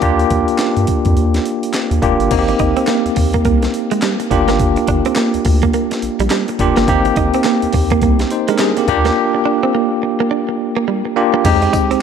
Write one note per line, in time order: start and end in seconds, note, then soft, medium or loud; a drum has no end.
0.00 0.25 D#2 loud
0.00 0.02 A#3 medium
0.00 1.06 A#3 medium
0.00 0.02 D4 medium
0.00 1.07 D4 medium
0.00 0.03 F4 medium
0.00 1.07 F4 medium
0.00 0.03 G4 loud
0.00 1.07 G4 loud
0.00 kick loud
0.00 closed hi-hat medium
0.19 closed hi-hat soft
0.30 0.45 D#2 medium
0.30 kick loud
0.30 closed hi-hat medium
0.48 closed hi-hat medium
0.58 snare loud
0.58 clap medium
0.58 closed hi-hat medium
0.77 0.86 G2 medium
0.77 closed hi-hat soft
0.87 kick medium
0.87 closed hi-hat medium
1.05 1.14 F2 loud
1.05 kick medium
1.05 closed hi-hat medium
1.17 1.39 D#2 medium
1.17 closed hi-hat medium
1.34 snare medium
1.34 closed hi-hat medium
1.45 closed hi-hat medium
1.63 closed hi-hat medium
1.73 snare loud
1.73 clap medium
1.73 closed hi-hat medium
1.91 2.00 D#2 medium
1.91 closed hi-hat soft
2.02 2.16 F1 medium
2.02 2.28 A#3 medium
2.02 2.28 D4 medium
2.02 2.29 F4 medium
2.02 2.29 G4 medium
2.02 kick medium
2.02 closed hi-hat medium
2.20 2.29 G1 medium
2.20 closed hi-hat soft
2.31 2.54 G#1 loud
2.31 3.35 A#3 medium
2.31 3.35 C4 medium
2.31 3.36 D#4 medium
2.31 2.40 F#4 medium
2.31 kick loud
2.31 closed hi-hat medium
2.31 crash loud
2.39 3.39 G4 loud
2.48 muted clean electric guitar stroke soft
2.48 closed hi-hat soft
2.59 2.74 G#1 loud
2.59 2.73 D#4 medium
2.59 kick loud
2.59 closed hi-hat medium
2.77 2.85 C4 medium
2.77 closed hi-hat medium
2.87 3.01 A#3 medium
2.87 snare loud
2.87 clap medium
2.87 closed hi-hat medium
3.06 3.10 D#2 medium
3.06 closed hi-hat soft
3.16 3.40 D#2 medium
3.16 muted clean electric guitar stroke soft
3.16 kick loud
3.16 open hi-hat medium
3.34 3.43 A#3 medium
3.34 kick medium
3.34 closed hi-hat medium
3.45 3.68 C2 medium
3.45 3.59 A#3 medium
3.45 kick medium
3.45 closed hi-hat medium
3.62 muted clean electric guitar stroke soft
3.62 snare medium
3.62 closed hi-hat medium
3.74 closed hi-hat medium
3.91 4.00 G#3 medium
3.91 closed hi-hat medium
4.02 4.16 G3 medium
4.02 snare loud
4.02 clap medium
4.02 closed hi-hat medium
4.20 muted clean electric guitar stroke soft
4.20 closed hi-hat medium
4.30 4.77 G1 medium
4.30 5.35 A#3 medium
4.30 5.35 D4 medium
4.30 5.35 F4 medium
4.30 5.36 G4 loud
4.30 kick medium
4.30 closed hi-hat medium
4.48 4.57 A#3 medium
4.48 snare medium
4.48 closed hi-hat soft
4.59 kick loud
4.59 closed hi-hat medium
4.76 muted clean electric guitar stroke soft
4.76 closed hi-hat soft
4.88 5.02 G1 loud
4.88 5.02 D4 medium
4.88 kick loud
4.88 closed hi-hat medium
5.05 5.14 C4 medium
5.05 closed hi-hat medium
5.15 5.30 A#3 medium
5.15 snare loud
5.15 clap medium
5.15 closed hi-hat medium
5.34 5.39 D2 soft
5.34 closed hi-hat soft
5.45 5.68 D2 loud
5.45 muted clean electric guitar stroke soft
5.45 kick loud
5.45 open hi-hat medium
5.62 5.71 A#3 medium
5.62 kick medium
5.62 closed hi-hat medium
5.73 5.87 A#3 medium
5.73 closed hi-hat medium
5.91 muted clean electric guitar stroke soft
5.91 snare medium
5.91 closed hi-hat medium
6.02 6.10 A#1 soft
6.02 closed hi-hat medium
6.20 6.29 A#1 medium
6.20 6.29 G3 medium
6.20 closed hi-hat medium
6.30 6.44 G3 medium
6.30 snare loud
6.30 clap medium
6.30 closed hi-hat medium
6.48 muted clean electric guitar stroke soft
6.48 closed hi-hat soft
6.59 6.73 F1 medium
6.59 6.86 A#3 medium
6.59 6.86 D4 medium
6.59 6.86 F4 medium
6.59 6.86 G4 loud
6.59 kick medium
6.59 closed hi-hat medium
6.76 6.86 G1 medium
6.76 6.86 A#3 medium
6.76 snare medium
6.76 closed hi-hat soft
6.88 7.11 G#1 loud
6.88 7.92 A#3 medium
6.88 7.92 C4 medium
6.88 7.92 D#4 medium
6.88 7.93 G4 loud
6.88 kick loud
6.88 closed hi-hat medium
7.05 muted clean electric guitar stroke soft
7.05 closed hi-hat soft
7.16 7.31 G#1 loud
7.16 7.30 D#4 medium
7.16 kick loud
7.16 closed hi-hat medium
7.34 7.43 C4 medium
7.34 closed hi-hat medium
7.44 7.59 A#3 medium
7.44 snare loud
7.44 clap medium
7.44 closed hi-hat medium
7.62 7.67 D#2 medium
7.62 closed hi-hat soft
7.73 7.97 D#2 medium
7.73 muted clean electric guitar stroke soft
7.73 kick loud
7.73 open hi-hat medium
7.90 8.00 A#3 medium
7.90 kick medium
7.90 closed hi-hat medium
8.02 8.25 C2 loud
8.02 8.16 A#3 medium
8.02 kick medium
8.02 closed hi-hat medium
8.19 muted clean electric guitar stroke soft
8.19 snare medium
8.19 closed hi-hat medium
8.30 8.48 D#4 medium
8.30 8.48 C5 medium
8.30 closed hi-hat medium
8.48 8.57 G#3 medium
8.48 8.60 D4 medium
8.48 8.59 A#4 medium
8.48 closed hi-hat medium
8.58 8.73 G3 medium
8.58 8.77 C4 medium
8.58 8.77 G#4 medium
8.58 snare loud
8.58 clap medium
8.58 closed hi-hat medium
8.77 8.87 A#3 medium
8.77 8.88 G4 medium
8.77 muted clean electric guitar stroke soft
8.77 closed hi-hat medium
8.88 9.11 D#2 loud
8.88 9.92 A#3 medium
8.88 9.93 D4 medium
8.88 9.93 F4 medium
8.88 9.93 G4 loud
8.88 kick medium
8.88 closed hi-hat medium
9.05 9.14 A#3 medium
9.05 snare medium
9.05 closed hi-hat soft
9.35 muted clean electric guitar stroke soft
9.45 9.59 D4 medium
9.63 9.72 C4 medium
9.75 9.88 A#3 medium
10.03 muted clean electric guitar stroke soft
10.20 10.29 A#3 medium
10.31 10.44 D4 medium
10.49 muted clean electric guitar stroke soft
10.77 10.85 A#3 medium
10.88 11.01 G3 medium
11.05 muted clean electric guitar stroke soft
11.16 11.42 A#3 medium
11.16 11.43 D4 medium
11.16 11.43 F4 medium
11.16 11.43 G4 medium
11.34 11.42 A#3 medium
11.44 11.68 F2 loud
11.44 12.02 G#3 medium
11.44 12.02 C4 medium
11.44 12.02 D#4 medium
11.44 12.02 G4 medium
11.44 kick loud
11.44 closed hi-hat medium
11.44 crash loud
11.62 muted clean electric guitar stroke soft
11.62 closed hi-hat soft
11.73 11.87 D#4 medium
11.73 kick loud
11.73 closed hi-hat medium
11.73 tambourine medium
11.91 11.96 C2 soft
11.91 12.00 C4 medium
11.91 closed hi-hat medium